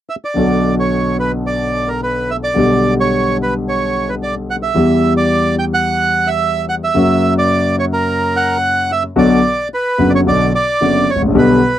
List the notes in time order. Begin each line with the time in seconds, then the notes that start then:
0.10 E5
0.25 D5
0.34 B1 B2 D3 F#3 B3 F#4
0.80 C#5
1.20 B4
1.47 D5
1.88 A#4
2.03 B4
2.31 E5
2.44 D5
2.54 B1 B2 D3 G3 B3
2.58 G4
3.00 C#5
3.43 B4
3.69 C#5
4.09 B4
4.23 D5
4.50 F#5
4.63 E5
4.74 E2 E3 G3 B3 G4
5.17 D5
5.59 G5
5.74 F#5
6.27 E5
6.69 F#5
6.84 E5
6.94 F#2 C#3 F#3 A#3 F#4
7.38 D5
7.79 C#5
7.93 A#4
8.36 F#5
8.92 E5
9.16 B1 B2 D3 F#3 B3 F#4 D5
9.74 B4
9.98 F#1 F#2 D3 F#3 B3 F#4
10.10 D5
10.15 C#5
10.26 B1 B2 D3 F#3 B3 F#4 D5
10.55 D5
10.81 F#1 F#2 D3 F#3 B3 F#4
11.10 C#5
11.16 G#1
11.22 A1
11.28 A#1
11.35 B1 B2 D3 G3 B3 G4 B4